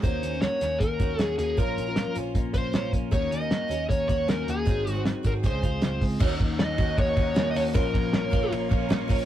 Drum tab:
CC |--------|--------|--------|--------|
RD |--------|--------|--------|--------|
HH |xxxxxxxx|xxxxxxxx|xxxxxxxx|xxxxxxxo|
SD |--oo--o-|--o---o-|--o---o-|--o---o-|
BD |o---oo--|o---oo-o|o---oo--|o--ooo-o|

CC |x-------|--------|
RD |-xxxxxxx|xxxxxxxx|
HH |-------o|p------o|
SD |--oo--o-|--o---o-|
BD |oo-ooo--|oo-o-o-o|